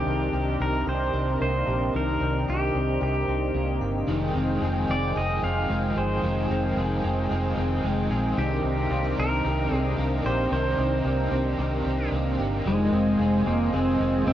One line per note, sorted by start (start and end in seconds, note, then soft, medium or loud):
0.00 4.05 C3 medium
0.00 1.94 D#3 medium
0.00 8.34 C4 medium
0.00 4.05 D4 medium
0.00 8.34 D#4 medium
0.00 0.63 G4 medium
0.00 4.05 A#4 medium
0.06 0.30 C2 loud
0.06 0.60 C4 medium
0.33 0.57 C2 medium
0.33 0.86 G4 medium
0.60 0.84 C2 medium
0.60 1.13 C4 medium
0.60 0.88 A#4 medium
0.87 1.11 C2 medium
0.87 1.66 G4 medium
0.87 1.38 C5 medium
1.13 1.37 C2 loud
1.13 2.20 C4 medium
1.40 1.65 C2 medium
1.40 3.53 A#3 medium
1.40 1.96 C5 loud
1.67 1.91 A#1 medium
1.67 2.46 G4 medium
1.94 2.18 C2 medium
1.94 4.08 D#3 medium
1.94 2.51 A#4 medium
2.21 2.45 C2 medium
2.21 2.74 C4 medium
2.48 2.72 C2 medium
2.48 3.00 G4 medium
2.48 3.02 G4 medium
2.74 2.98 C2 medium
2.74 3.27 C4 medium
3.01 3.25 C2 medium
3.01 3.80 G4 medium
3.01 3.79 G4 medium
3.28 3.52 C2 medium
3.28 4.34 C4 medium
3.54 3.78 C2 medium
3.54 4.14 A#3 medium
3.81 4.05 G1 medium
3.81 4.14 G4 medium
4.07 4.32 F1 medium
4.07 4.35 F2 medium
4.07 4.35 C3 medium
4.07 4.36 D#3 medium
4.07 8.33 F3 medium
4.07 4.36 G#3 medium
4.07 4.35 C4 medium
4.07 4.33 F4 medium
4.07 8.33 G#4 medium
4.07 8.33 G5 medium
4.34 4.59 F1 medium
4.34 4.61 G#3 soft
4.34 4.62 C4 soft
4.34 4.62 F4 medium
4.38 4.59 D#3 soft
4.60 4.86 F1 medium
4.60 4.88 D#3 medium
4.60 4.89 G#3 medium
4.60 4.88 C4 medium
4.60 5.14 G#4 medium
4.65 4.86 F4 medium
4.87 5.13 F1 medium
4.87 5.15 G#3 soft
4.87 5.16 C4 soft
4.87 5.15 F4 soft
4.87 5.18 D5 medium
4.92 5.15 D#3 soft
5.14 5.40 F1 medium
5.14 5.42 F2 medium
5.14 5.42 C3 medium
5.14 5.43 D#3 medium
5.14 5.43 G#3 medium
5.14 5.42 C4 medium
5.14 5.40 F4 medium
5.14 5.95 G#4 medium
5.14 5.44 D#5 medium
5.41 5.66 F1 medium
5.41 5.69 G#3 soft
5.41 5.70 C4 soft
5.41 5.69 F4 soft
5.41 5.99 F5 medium
5.45 5.67 D#3 soft
5.68 5.94 F1 medium
5.68 5.95 D#3 medium
5.68 5.96 G#3 medium
5.68 5.95 C4 medium
5.72 5.93 F4 medium
5.94 6.20 G1 medium
5.94 6.22 G#3 soft
5.94 6.23 C4 soft
5.94 6.22 F4 soft
5.94 6.76 G#4 medium
5.94 7.54 C5 medium
5.99 6.22 D#3 soft
6.22 6.47 F1 medium
6.22 6.49 F2 medium
6.22 6.49 C3 medium
6.22 6.50 D#3 medium
6.22 6.50 G#3 medium
6.22 6.49 C4 medium
6.22 6.47 F4 medium
6.48 6.74 F1 medium
6.48 6.75 G#3 soft
6.48 6.77 C4 soft
6.48 6.76 F4 soft
6.53 6.73 D#3 soft
6.75 7.00 F1 medium
6.75 7.02 D#3 medium
6.75 7.03 G#3 medium
6.75 7.02 C4 medium
6.75 7.29 G#4 medium
6.79 7.01 F4 medium
7.02 7.27 F1 medium
7.02 7.30 G#3 soft
7.02 7.30 C4 soft
7.02 7.29 F4 medium
7.06 7.30 D#3 soft
7.30 7.54 F1 medium
7.30 7.57 F2 medium
7.30 7.57 C3 medium
7.30 7.57 D#3 medium
7.30 7.58 G#3 medium
7.30 7.57 C4 medium
7.30 7.55 F4 medium
7.30 8.09 G#4 medium
7.56 7.81 F1 medium
7.56 7.83 G#3 medium
7.56 7.84 C4 medium
7.56 7.83 F4 soft
7.60 7.82 D#3 soft
7.83 8.07 F1 medium
7.83 8.10 D#3 medium
7.83 8.11 G#3 medium
7.83 8.11 C4 medium
7.87 8.09 F4 medium
8.10 8.34 A#1 medium
8.10 8.38 G#3 soft
8.10 8.38 C4 soft
8.10 8.37 F4 medium
8.10 8.43 G#4 medium
8.15 8.37 D#3 soft
8.37 8.61 C2 medium
8.37 8.64 C3 medium
8.37 12.62 C3 medium
8.37 8.64 D#3 medium
8.37 8.65 A#3 medium
8.37 12.62 C4 medium
8.37 8.64 C4 medium
8.37 12.62 D4 medium
8.37 12.62 D#4 medium
8.37 9.14 G4 medium
8.37 8.62 G4 medium
8.37 12.62 A#4 medium
8.63 8.88 C2 medium
8.63 8.91 C4 soft
8.63 8.90 G4 soft
8.68 8.90 A#3 soft
8.89 9.14 C2 medium
8.89 9.17 D#3 medium
8.89 9.18 A#3 medium
8.89 9.17 C4 medium
8.89 9.04 F4 medium
8.94 9.15 G4 medium
9.04 9.43 G4 medium
9.16 9.42 C2 medium
9.16 9.44 C4 soft
9.16 9.44 G4 soft
9.16 9.74 A#4 loud
9.20 9.44 A#3 soft
9.43 9.68 C2 medium
9.43 9.71 C3 medium
9.43 9.71 D#3 medium
9.43 9.72 A#3 medium
9.43 9.72 C4 medium
9.43 9.69 G4 medium
9.70 9.95 C2 medium
9.70 9.99 C4 soft
9.70 9.98 G4 soft
9.74 9.98 A#3 soft
9.74 9.95 G#4 loud
9.97 10.22 C2 medium
9.97 10.24 D#3 medium
9.97 10.25 A#3 medium
9.97 10.25 C4 medium
10.02 10.23 G4 medium
10.24 10.48 A#1 medium
10.24 10.52 C4 soft
10.24 10.51 G4 medium
10.24 10.51 C5 medium
10.28 10.52 A#3 soft
10.51 10.75 C2 medium
10.51 10.78 C3 medium
10.51 10.79 D#3 medium
10.51 10.79 A#3 medium
10.51 10.79 C4 medium
10.51 10.77 G4 medium
10.51 12.09 C5 medium
10.78 11.02 C2 medium
10.78 11.06 C4 soft
10.78 11.05 G4 soft
10.83 11.05 A#3 soft
11.04 11.29 C2 medium
11.04 11.32 D#3 medium
11.04 11.32 A#3 medium
11.04 11.32 C4 medium
11.04 11.58 G4 medium
11.09 11.30 G4 medium
11.31 11.55 C2 medium
11.31 11.59 C4 soft
11.31 11.58 G4 soft
11.35 11.59 A#3 soft
11.58 11.82 C2 medium
11.58 11.85 C3 medium
11.58 11.86 D#3 medium
11.58 11.86 A#3 medium
11.58 11.86 C4 medium
11.58 11.83 G4 medium
11.84 12.09 C2 medium
11.84 12.13 C4 soft
11.84 12.12 G4 medium
11.89 12.11 A#3 soft
12.11 12.36 C2 medium
12.11 12.38 D#3 medium
12.11 12.39 A#3 medium
12.11 12.39 C4 medium
12.15 12.36 G4 medium
12.38 12.62 G1 medium
12.38 12.67 C4 medium
12.38 12.65 G4 medium
12.42 12.67 A#3 soft
12.65 12.89 F1 medium
12.65 12.92 F2 medium
12.65 12.93 C3 medium
12.65 12.93 D#3 medium
12.65 13.46 G#3 medium
12.65 12.93 G#3 medium
12.65 12.91 C4 medium
12.65 14.33 F4 medium
12.65 14.33 C5 medium
12.65 14.33 D#5 medium
12.65 14.33 G#5 medium
12.92 13.16 F1 medium
12.92 13.20 G#3 soft
12.92 13.19 C4 soft
12.96 13.19 D#3 soft
13.19 13.43 F1 medium
13.19 13.46 C3 medium
13.19 13.47 D#3 medium
13.19 13.47 G#3 medium
13.19 13.71 G#4 medium
13.23 13.44 C4 medium
13.45 13.70 F1 medium
13.45 13.74 G#3 soft
13.45 13.74 A#3 medium
13.45 13.73 C4 medium
13.50 13.73 D#3 soft
13.72 13.97 F1 medium
13.72 14.00 F2 medium
13.72 14.00 C3 medium
13.72 14.01 D#3 medium
13.72 14.00 G#3 medium
13.72 14.23 C4 loud
13.72 13.97 C4 medium
13.72 14.33 G#4 medium
13.98 14.23 F1 medium
13.98 14.27 G#3 soft
13.98 14.26 C4 medium
14.03 14.26 D#3 soft
14.25 14.33 F1 medium
14.25 14.33 C3 medium
14.25 14.33 D#3 medium
14.25 14.33 G#3 medium
14.25 14.33 C4 loud
14.30 14.33 C4 medium